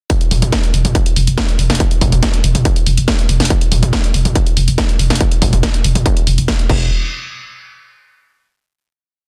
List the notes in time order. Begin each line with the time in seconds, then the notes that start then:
0.10 kick, closed hi-hat
0.21 closed hi-hat
0.31 E1, mid tom, open hi-hat
0.42 E1, closed hi-hat, mid tom
0.52 kick, snare, closed hi-hat
0.63 closed hi-hat
0.74 E1, open hi-hat
0.85 E1, closed hi-hat, mid tom
0.95 kick, closed hi-hat
1.06 closed hi-hat
1.16 E1, open hi-hat
1.27 E1, closed hi-hat
1.38 kick, snare, closed hi-hat
1.49 closed hi-hat
1.59 E1, open hi-hat
1.70 E1, snare, closed hi-hat
1.75 closed hi-hat
1.80 kick, closed hi-hat
1.91 closed hi-hat
2.01 E1, kick, mid tom, open hi-hat
2.12 E1, closed hi-hat, mid tom
2.23 kick, snare, closed hi-hat
2.34 closed hi-hat
2.44 E1, open hi-hat
2.55 E1, closed hi-hat, mid tom
2.65 kick, closed hi-hat
2.76 closed hi-hat
2.86 E1, open hi-hat
2.97 E1, closed hi-hat
3.08 kick, snare, closed hi-hat
3.19 closed hi-hat
3.29 E1, open hi-hat
3.40 E1, snare, closed hi-hat
3.45 closed hi-hat
3.50 kick, closed hi-hat
3.61 closed hi-hat
3.72 E1, mid tom, open hi-hat
3.83 E1, closed hi-hat, mid tom
3.93 kick, snare, closed hi-hat
4.04 closed hi-hat
4.14 E1, open hi-hat
4.25 E1, closed hi-hat, mid tom
4.35 kick, closed hi-hat
4.46 closed hi-hat
4.57 E1, open hi-hat
4.68 E1, closed hi-hat
4.78 kick, snare, closed hi-hat
4.89 closed hi-hat
4.99 E1, open hi-hat
5.10 E1, snare, closed hi-hat
5.15 closed hi-hat
5.21 kick, closed hi-hat
5.31 closed hi-hat
5.42 E1, kick, mid tom, open hi-hat
5.53 E1, closed hi-hat, mid tom
5.63 kick, snare, closed hi-hat
5.74 closed hi-hat
5.84 E1, open hi-hat
5.95 E1, closed hi-hat, mid tom
6.06 kick, closed hi-hat
6.17 closed hi-hat
6.27 E1, open hi-hat
6.38 E1, closed hi-hat
6.48 kick, snare, closed hi-hat
6.59 closed hi-hat
6.70 E1, kick, crash